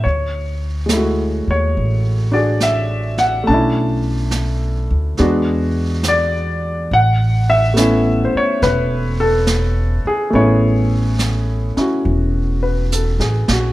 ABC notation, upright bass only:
X:1
M:4/4
L:1/8
Q:"Swing" 1/4=70
K:A
V:1 name="Upright bass" clef=bass
D,,3 ^D,, A,,,4 | B,,,3 D,, E,,4 | A,,,3 z E,,,3 z | A,,,3 z E,,,2- (3E,,, A,,, _B,,, |]